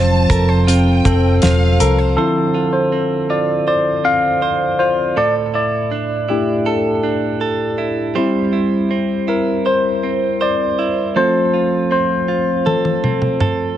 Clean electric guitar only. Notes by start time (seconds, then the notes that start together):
Already playing: F3 C4 F4 C5
0.30 A#4
0.49 C5
0.67 F4
1.05 C4
1.43 F4
1.80 A#4
1.99 C5
2.17 D3 C5
2.54 F4
2.92 C4
3.30 F4
3.68 C5
4.04 C4
4.42 C5
4.80 F4
5.16 A2 A4
5.54 E4
5.92 D4
6.29 E4
6.66 A4
7.04 D4
7.41 A4
7.78 E4
8.15 G3 C5
8.53 E4
8.91 C4
9.28 E4
9.66 C5
10.03 C4
10.41 C5
10.79 E4
11.16 F3 A4
11.54 F4
11.91 C4
12.28 F4
12.66 A4
13.04 C4
13.41 A4